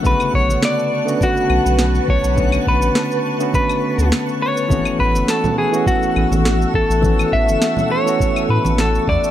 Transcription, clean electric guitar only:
X:1
M:4/4
L:1/8
Q:"Swing 16ths" 1/4=103
K:A
V:1 name="Clean electric guitar"
B c d2 F3 c- | c B3 B2 z c- | c B A G F3 A- | A e2 c2 B A d |]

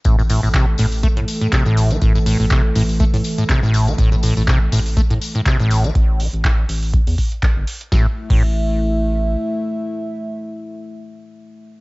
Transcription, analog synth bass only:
X:1
M:4/4
L:1/16
Q:"Swing 16ths" 1/4=122
K:C
V:1 name="Analog synth bass" clef=bass
A,,,3 A,,,3 A,,,3 A,, z3 A,,,3 | A,,,3 A,,,3 A,,,3 A,, z3 A,,,3 | A,,,3 A,,,3 A,,,3 A,, z3 A,,,3 | A,,,3 A,,,3 A,,,3 E,, z3 G,,, z2 |
A,,, z2 A,,,8- A,,, z4 | z16 |]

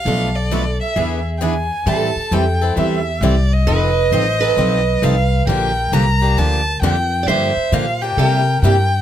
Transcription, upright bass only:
X:1
M:4/4
L:1/8
Q:"Swing" 1/4=133
K:Bphr
V:1 name="Upright bass" clef=bass
B,,,4 E,,4 | [K:Am] A,, z F,,2 E,,2 C,,2 | F,,,2 A,,,2 B,,,2 C,,2 | _B,,,2 C,,2 D,,2 F,,2 |
G,, z _B,,2 C,2 G,,2 |]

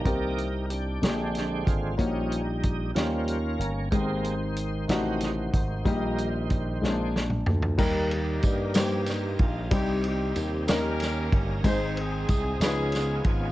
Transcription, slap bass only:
X:1
M:6/8
L:1/8
Q:3/8=62
K:Eb
V:1 name="Slap bass" clef=bass
C,,3 B,,,2 A,,, | B,,,3 E,,2 G,,, | A,,,3 =A,,,2 _A,,, | B,,,3 B,,,2 D,, |
E,,2 G,,3 B,,, | C,,2 E,, E,,2 G,,, | A,,,2 C,, _D,,2 A,,, |]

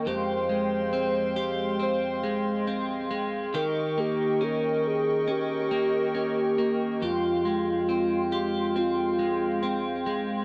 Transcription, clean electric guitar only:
X:1
M:4/4
L:1/8
Q:1/4=69
K:Fm
V:1 name="Clean electric guitar"
[F,,G] A, C G C A, C A, | [E,G] B, D2 D B, D B, | [F,,G] A, C G C A, C A, |]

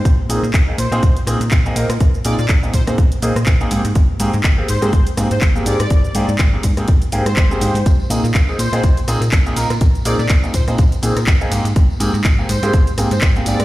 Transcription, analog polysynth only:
X:1
M:4/4
L:1/16
Q:"Swing 16ths" 1/4=123
K:Bbmix
V:1 name="Analog polysynth"
z6 c3 z6 z | z2 d d z2 c c z8 | z6 c3 z2 c z2 d2- | d4 z6 z c4- c |
z6 c3 z6 z | z2 d d z2 c c z8 | z6 c3 z2 c z2 d2 |]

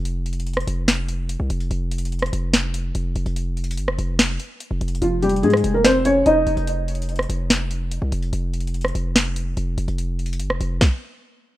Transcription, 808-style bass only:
X:1
M:4/4
L:1/16
Q:1/4=145
K:Fm
V:1 name="808-style bass" clef=bass
F,,,6 F,,,6- F,,, C,, F,,,2 | F,,,6 F,,,6 F,,,2 F,,, F,,,- | F,,,4 G,,, F,,, F,,,4 z3 F,,, F,,,2 | F,,,4 A,,2 F,,,6 F,,,2 F,,, F,,,- |
F,,,6 F,,,6- F,,, C,, F,,,2 | F,,,6 F,,,6 F,,,2 F,,, F,,,- | F,,,4 G,,, F,,, F,,,2 z8 |]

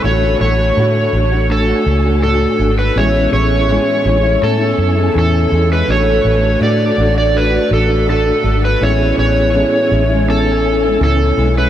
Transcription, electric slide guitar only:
X:1
M:4/4
L:1/16
Q:1/4=82
K:A
V:1 name="Electric slide guitar"
c2 c6 A4 A3 B | c2 c6 A4 A3 B | c4 d3 d B2 A2 A3 B | c2 c6 A4 A3 B |]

